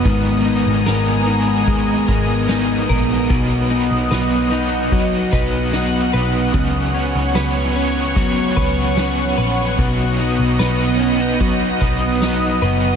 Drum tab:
RD |--x--x--|-x------|--------|-----x--|
TB |--x---x-|--x---x-|--x---x-|--x---x-|
SD |--o---o-|--o---o-|--o---o-|--o---o-|
BD |o---oo-o|o---oo--|o---oo--|o---oo--|